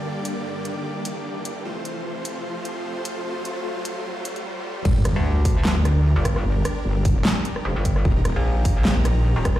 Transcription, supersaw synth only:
X:1
M:4/4
L:1/8
Q:"Swing 16ths" 1/4=150
K:Gm
V:1 name="Supersaw synth"
[G,,D,B,Gd]8 | [F,,C,A,Fc]8- | [F,,C,A,Fc]8 | [DGB]8- |
[DGB]8 | [E,EBb]8 |]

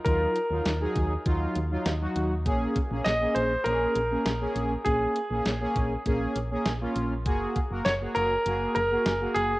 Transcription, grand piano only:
X:1
M:4/4
L:1/8
Q:1/4=100
K:Bbm
V:1 name="Grand piano"
B4 z4 | z2 e c B4 | A4 z4 | z2 d B2 B2 A |]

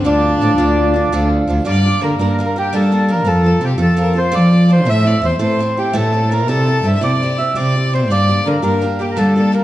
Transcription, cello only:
X:1
M:9/8
L:1/8
Q:3/8=112
K:Dm
V:1 name="Cello" clef=bass
D,,2 A,, D,,3 D,,2 D,, | [K:Gdor] G,,2 D, G,, z2 G,3 | F,,2 C, F,, z2 F,3 | A,,2 E,, A,, z2 A,,3 |
C,2 G,, C, z2 C,3 | G,,2 D, G,, z2 G,3 |]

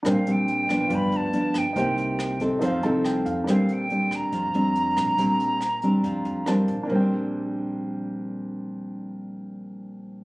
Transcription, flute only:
X:1
M:4/4
L:1/8
Q:1/4=140
K:Bb
V:1 name="Flute"
f g3 =b a2 g- | g3 z4 z | f g2 b4- b- | b6 z2 |
z8 | z8 |]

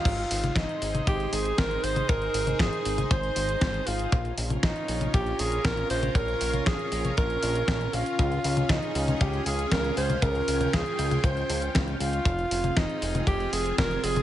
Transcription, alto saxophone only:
X:1
M:4/4
L:1/8
Q:1/4=118
K:Ab
V:1 name="Alto saxophone"
F2 E2 G A B c | B2 A2 c3 F- | F z E2 G A B c | B2 A2 B3 F- |
F2 E2 G A B c | B2 A2 c2 z F- | F2 E2 G A B A |]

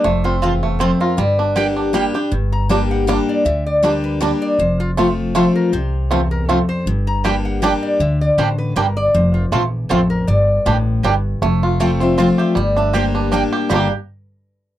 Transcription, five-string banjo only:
X:1
M:3/4
L:1/8
Q:"Swing" 1/4=158
K:Gdor
V:1 name="Five-string banjo"
A, C F A, C F | G, D D, D G, G | z2 [G,D] z [G,D] z | z2 [G,D] z [G,D] z |
z2 [A,CF] z [A,CF] z | z2 [A,CF] z [A,CF] z | z2 [G,D] z [G,D] z | z2 [G,D] z [G,D] z |
z2 [A,CF] z [A,CF] z | z2 [G,D] z [G,D] z | A, F A, C F G | G, D G D D G |
[G,B,DG] z4 z |]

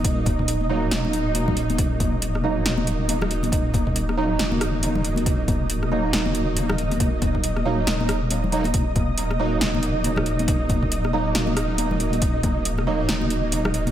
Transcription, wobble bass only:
X:1
M:4/4
L:1/8
Q:"Swing 16ths" 1/4=138
K:Ebm
V:1 name="Wobble bass" clef=bass
E,,,4 E,,,4 | E,,,4 E,,,4 | E,,,4 E,,,4 | E,,,4 E,,,4 |
E,,,4 E,,,4 | E,,,4 E,,,4 | E,,,4 E,,,4 | E,,,4 E,,,4 |]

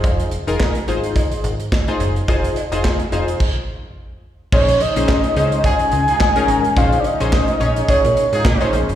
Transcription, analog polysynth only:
X:1
M:4/4
L:1/16
Q:"Swing 16ths" 1/4=107
K:Bbm
V:1 name="Analog polysynth"
[EFAc]2 z [EFAB]2 z [EFAc]4- [EFAc] z2 [EFAc]2 z | [EFAc]2 z [EFAc]2 z [EFAc]2 z8 | [DEAc]2 z [DEAc]2 z [DEAc]4- [DEAc] z2 [DEAB]2 z | [DEAc]2 z [DEAc]2 z [DEAd]4- [DEAd] z2 [DEAc]2 z |]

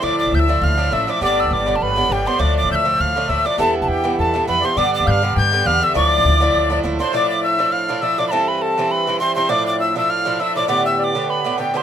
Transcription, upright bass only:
X:1
M:4/4
L:1/16
Q:"Swing" 1/4=203
K:Ddor
V:1 name="Upright bass" clef=bass
D,,3 A,,, D,,4 D,,4 A,,,2 z2 | G,,,3 D,, G,,,4 G,,,4 G,,,2 z2 | D,,3 A,,, D,,4 D,,4 D,,2 z2 | E,,3 B,,, E,,4 E,,4 F,,2 z2 |
G,,3 D,, G,,4 G,,4 E,,2 z2 | D,,3 A,,, D,,4 D,,4 D,,2 z2 | z16 | z16 |
z16 | z16 |]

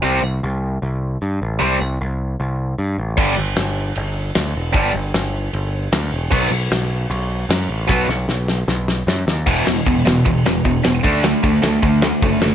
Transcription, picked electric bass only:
X:1
M:4/4
L:1/8
Q:1/4=153
K:Em
V:1 name="Picked electric bass" clef=bass
C,, C,, C,,2 C,,2 G,, A,,, | C,, C,, C,,2 C,,2 G,, A,,, | G,,, G,,, G,,,2 G,,,2 D,, E,,, | G,,, G,,, G,,,2 G,,,2 D,, E,,, |
B,,, B,,, B,,,2 B,,,2 F,, A,,, | B,,, B,,, B,,,2 B,,,2 F,, ^D,, | E,,, E,,, E,,, E,,, E,,, E,,, E,,, E,,, | D,,2 D,, D,, D,,2 F,,,2 |]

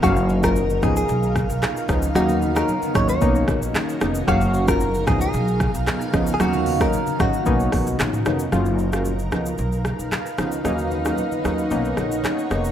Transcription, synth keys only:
X:1
M:4/4
L:1/16
Q:1/4=113
K:F#
V:1 name="Synth keys"
[F,A,Ce]3 [F,A,CE] z2 [E,B,CD]2 z6 [E,B,CD]2 | [F,A,CD]3 [F,A,CD] z2 [F,A,CD]2 [A,B,CD]6 [A,B,CD]2 | [F,A,Ce]3 [F,A,CE] z2 [E,B,CD]2 z6 [E,B,CD]2 | [F,A,CD]3 [F,A,CD] z2 [F,A,CD]2 [A,B,CD]6 [A,B,CD]2 |
[F,A,CE]3 [F,A,CE] z2 [E,B,CD]2 z6 [E,B,CD]2 | [F,A,CD]3 [F,A,CD] z2 [F,A,CD]2 [A,B,CD]6 [A,B,CD]2 |]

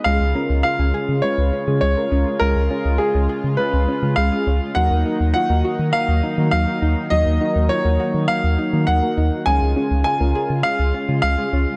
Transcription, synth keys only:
X:1
M:4/4
L:1/16
Q:1/4=102
K:Db
V:1 name="Synth keys"
[A,DFA]2 [A,DFB]3 [A,DFA]3 [A,DF_c]3 [A,DFA]2 [A,DFB]3 | [A,DFA]2 [A,DFA]3 [A,DFA]3 [A,DFA]3 [A,DFA]2 [A,DFA]3 | [B,EGB]2 [B,EGB]3 [B,EGB]3 [B,EGB]3 [B,EGB]2 [B,EGB]3 | [B,EGB]2 [B,EGB]3 [B,EGB]3 [B,EGB]3 [B,EGB]2 [B,EGB]3 |
[A,DFA]2 [A,DFA]3 [A,DFB]3 [A,DFA]3 [A,DFA]2 [A,DFA]3 |]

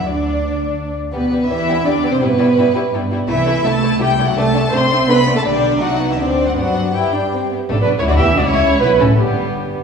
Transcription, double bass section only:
X:1
M:3/4
L:1/16
Q:1/4=165
K:G
V:1 name="Double bass section" clef=bass
D,,8- D,,2 z2 | E,,4 E,,4 E,,4 | G,,4 G,,4 G,,4 | C,,4 C,,4 C,,4 |
C,,4 C,,4 C,,4 | B,,,4 C,,4 D,,4 | G,,8- G,,2 z2 | [K:Glyd] A,,, B,,,2 C,, D,, E,,2 D,, C,,4 |
B,,,2 A,,,2 G,,,6 z2 |]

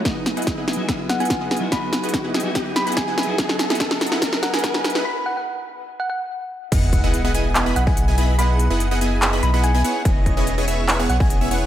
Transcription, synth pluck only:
X:1
M:4/4
L:1/16
Q:1/4=144
K:E
V:1 name="Synth pluck"
z8 z2 f g z4 | b z8 z b b g2 z2 | z8 z2 f g z4 | b z f f z4 z f f z4 z |
z8 z2 f g z4 | b z8 z b b g2 z2 | z8 z2 f g z4 |]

